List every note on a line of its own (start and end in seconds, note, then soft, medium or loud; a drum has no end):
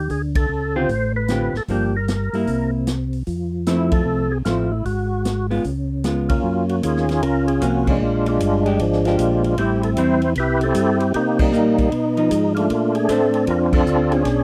0.00 0.11 G4 medium
0.10 0.46 D2 medium
0.10 0.22 G#4 medium
0.10 kick soft
0.10 open hi-hat soft
0.35 0.76 A4 medium
0.35 kick medium
0.35 ride medium
0.49 0.86 C#2 medium
0.76 0.88 D3 medium
0.76 0.88 C4 medium
0.76 0.88 F4 medium
0.76 0.88 G4 medium
0.76 1.12 C5 loud
0.89 1.50 A1 medium
0.89 kick soft
0.89 open hi-hat soft
1.16 1.56 B4 medium
1.28 1.52 D3 soft
1.28 1.52 C4 soft
1.28 1.53 F4 soft
1.28 1.53 G4 medium
1.28 snare medium
1.28 closed hi-hat soft
1.54 1.61 A1 soft
1.54 1.63 A4 medium
1.54 snare soft
1.68 2.29 G1 medium
1.68 1.92 F3 soft
1.68 1.92 A#3 medium
1.68 1.92 D4 medium
1.68 1.96 G4 medium
1.68 kick soft
1.68 open hi-hat soft
1.97 2.71 A#4 medium
2.08 snare medium
2.08 closed hi-hat soft
2.33 2.46 G2 medium
2.33 2.85 A#3 medium
2.33 2.85 E4 medium
2.33 open hi-hat soft
2.47 3.23 C2 medium
2.47 kick soft
2.47 open hi-hat soft
2.87 snare medium
2.87 closed hi-hat soft
3.13 open hi-hat soft
3.27 4.02 F2 medium
3.27 kick soft
3.27 open hi-hat soft
3.66 4.27 F3 medium
3.66 4.27 A3 medium
3.66 4.27 C4 medium
3.66 3.93 E4 medium
3.66 4.27 E4 medium
3.66 snare medium
3.66 closed hi-hat soft
3.91 4.33 A4 loud
3.91 kick medium
3.91 ride medium
4.05 4.43 C2 medium
4.32 4.38 G#4 medium
4.45 4.82 A1 medium
4.45 4.69 F3 soft
4.45 4.69 A3 medium
4.45 4.69 C4 soft
4.45 4.69 E4 soft
4.45 4.72 F4 medium
4.45 snare medium
4.45 closed hi-hat soft
4.72 4.85 E4 medium
4.85 5.60 G#1 medium
4.85 5.47 F#4 medium
4.85 kick soft
4.85 open hi-hat soft
5.25 snare medium
5.25 closed hi-hat soft
5.50 5.63 G#3 medium
5.50 5.63 B3 medium
5.50 5.64 F4 medium
5.50 open hi-hat soft
5.64 6.40 C#2 medium
5.64 kick soft
5.64 open hi-hat soft
6.04 6.27 G#3 soft
6.04 6.27 B3 soft
6.04 6.28 F4 soft
6.04 snare medium
6.04 closed hi-hat soft
6.29 7.05 A#3 soft
6.29 6.82 C#4 medium
6.29 6.66 F4 medium
6.29 kick medium
6.29 ride medium
6.43 6.82 F#2 medium
6.69 6.76 F#4 medium
6.69 ride soft
6.83 7.21 D#2 medium
6.83 7.22 C#4 medium
6.83 7.22 F4 medium
6.83 7.24 G#4 medium
6.83 kick soft
6.83 hi-hat pedal medium
6.83 ride medium
6.97 snare soft
7.09 snare soft
7.09 ride soft
7.22 7.61 C#2 medium
7.22 7.97 C#4 medium
7.22 7.87 F4 medium
7.22 7.46 A#4 medium
7.22 kick soft
7.22 ride medium
7.48 7.62 G#4 medium
7.48 ride soft
7.61 8.00 C2 medium
7.61 8.01 F3 medium
7.61 8.01 A#3 medium
7.61 8.02 C#4 medium
7.61 7.88 F#4 medium
7.61 kick soft
7.61 hi-hat pedal medium
7.61 ride medium
7.87 8.28 G#3 medium
7.87 8.27 D4 medium
7.87 8.27 F4 medium
7.87 kick medium
7.87 crash medium
8.01 8.39 A#1 medium
8.26 8.81 G#3 medium
8.26 8.79 D4 medium
8.26 8.64 F4 loud
8.26 ride soft
8.40 8.78 G1 medium
8.40 kick soft
8.40 hi-hat pedal medium
8.40 ride medium
8.66 8.78 G#3 medium
8.66 8.79 D4 medium
8.66 8.79 G4 medium
8.66 ride soft
8.79 9.17 G#1 medium
8.79 9.55 F3 medium
8.79 9.06 G#3 medium
8.79 9.06 D4 medium
8.79 kick soft
8.79 ride medium
8.93 snare soft
9.05 9.56 G#3 medium
9.05 9.56 D4 medium
9.05 9.55 D4 medium
9.05 9.43 F4 medium
9.05 9.57 G4 medium
9.05 snare soft
9.05 ride soft
9.19 9.57 A#1 medium
9.19 kick soft
9.19 hi-hat pedal medium
9.19 ride medium
9.44 9.58 F4 medium
9.44 ride soft
9.57 9.96 A1 medium
9.57 9.96 G3 soft
9.57 9.96 C4 medium
9.57 10.34 C4 medium
9.57 9.96 E4 medium
9.57 10.34 E4 medium
9.57 9.82 G4 medium
9.57 kick soft
9.57 ride medium
9.83 9.90 A4 medium
9.83 ride soft
9.97 10.35 E2 medium
9.97 10.20 G3 medium
9.97 10.21 C4 medium
9.97 10.20 E4 medium
9.97 10.21 C5 loud
9.97 kick soft
9.97 hi-hat pedal medium
9.97 ride medium
10.22 10.30 C5 medium
10.22 ride soft
10.35 10.74 C2 medium
10.35 10.60 B4 medium
10.35 kick soft
10.35 ride medium
10.40 10.64 E4 medium
10.40 11.12 G4 medium
10.61 10.99 A4 loud
10.61 ride soft
10.65 11.12 C4 medium
10.65 11.13 E4 medium
10.74 11.13 G2 loud
10.74 kick soft
10.74 hi-hat pedal medium
10.74 ride medium
11.00 ride soft
11.14 11.52 C3 medium
11.14 11.40 A#3 medium
11.14 11.39 D#4 medium
11.14 11.40 G4 medium
11.14 kick soft
11.14 ride medium
11.39 11.90 G3 medium
11.39 11.89 A#3 medium
11.39 12.53 D#4 loud
11.39 kick medium
11.39 crash medium
11.52 11.91 A#2 medium
11.52 11.75 G3 medium
11.52 11.75 A#3 medium
11.52 11.76 D#4 medium
11.52 hi-hat pedal medium
11.78 kick medium
11.78 ride soft
11.92 12.30 B2 medium
11.92 kick soft
11.92 ride medium
12.17 12.67 F3 medium
12.17 12.68 D#4 medium
12.17 ride soft
12.31 12.69 G#2 medium
12.31 kick soft
12.31 hi-hat pedal medium
12.31 ride medium
12.55 13.31 A3 medium
12.55 13.10 D4 medium
12.55 12.96 F4 medium
12.55 ride soft
12.70 13.08 A#2 medium
12.70 kick soft
12.70 ride medium
12.95 13.09 G#4 medium
12.95 ride soft
13.09 13.47 A2 medium
13.09 13.74 C4 medium
13.09 13.68 D4 medium
13.09 13.49 D4 medium
13.09 13.45 A4 medium
13.09 13.69 A4 medium
13.09 13.69 C5 medium
13.09 kick soft
13.09 hi-hat pedal soft
13.09 ride medium
13.33 ride soft
13.47 13.86 F2 medium
13.47 13.75 D4 medium
13.47 14.23 F4 medium
13.47 13.59 A#4 medium
13.47 kick soft
13.47 ride medium
13.73 14.24 C4 medium
13.73 14.13 D4 medium
13.73 14.14 A4 loud
13.73 kick medium
13.73 crash medium
13.86 14.24 D2 medium
13.86 hi-hat pedal medium
14.12 14.44 C#4 medium
14.12 14.44 D4 medium
14.12 14.44 G#4 medium
14.12 ride soft
14.25 14.44 B1 medium
14.25 kick soft
14.25 snare soft
14.25 ride medium